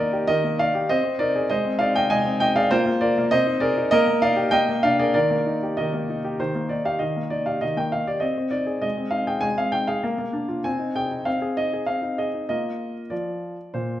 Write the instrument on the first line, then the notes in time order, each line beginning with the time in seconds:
grand piano
Already playing: D#3 A#3 D#4 A#4 D5 D#5
0.13 G4
0.27 D#3 A#4 D#5
0.44 A#3
0.59 D#4 D5 F5
0.75 G4
0.89 C4 C5 D#5
1.04 C4
1.19 D#4 A#4 D5
1.35 G#4
1.50 G#3 C5 D#5
1.65 C4
1.79 D#4 D5 F5
1.95 G#4 D#5 G5
2.10 G#3 D#5 G#5
2.25 C4
2.40 D#4 D#5 G5
2.55 G#4 D5 F5
2.71 A#3 F4 C5
2.86 A#3
3.01 F4 A#4 D5
3.18 A#3
3.31 C4 C5 D#5
3.47 D#4
3.60 G#4 A#4 D5
3.78 D#4
3.91 A#3 A#4 D#5
4.08 A#3
4.22 D#4 D5 F5
4.36 G4
4.51 A#3 D#5 G5
4.69 A#3
4.83 D4 D5 F5
4.99 G#4 A#4 D5
5.14 D#3 A#4 D5
5.31 A#3
5.46 D#4
5.63 G4
5.77 D#3 A#4 D#5
5.94 A#3
6.10 D#4
6.25 G4
6.40 D#3 C5
6.55 A#3
6.69 D#4 D5
6.85 G4 F5
6.99 D#3 D#5
7.17 A#3
7.30 D#4 D5
7.46 G4 F5
7.61 D#3 D#5
7.77 A#3 G5
7.92 D#4 F5
8.07 G4 D5
8.20 C4 D#5
8.38 C4
8.51 D#4 D5
8.67 G#4
8.82 G#3 D#5
8.97 C4
9.11 D#4 F5
9.27 G#4 G5
9.41 G#3 G#5
9.57 C4 F5
9.72 D#4 G5
9.88 G#4 F5
10.04 A#3
10.18 A#3
10.33 D4
10.48 F4
10.64 C4 G#5
10.79 D#4
10.96 G#4 G5
11.11 D#4
11.25 C4 F5
11.42 G#4
11.57 D#4 D#5
11.73 G#4
11.86 C4 F5
12.02 D#4
12.18 G#4 D#5
12.49 A#3 F4 A#4 D#5
13.10 F3 D5
13.74 A#2 C5